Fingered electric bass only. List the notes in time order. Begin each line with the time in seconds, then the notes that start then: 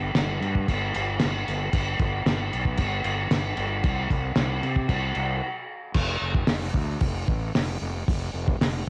Already playing: G1
0.15 G1
0.41 G2
0.69 G1
0.95 G1
1.24 G1
1.48 G1
1.73 G1
1.99 G1
2.25 G1
2.54 B1
2.79 G1
3.05 G1
3.30 G1
3.57 G1
3.85 C2
4.10 C2
4.35 C2
4.63 C3
4.89 C2
5.16 C2
5.94 F1
6.21 F1
6.48 F1
6.74 D2
7.02 F1
7.29 A1
7.55 F1
7.81 F1
8.09 F1
8.34 F1
8.60 F1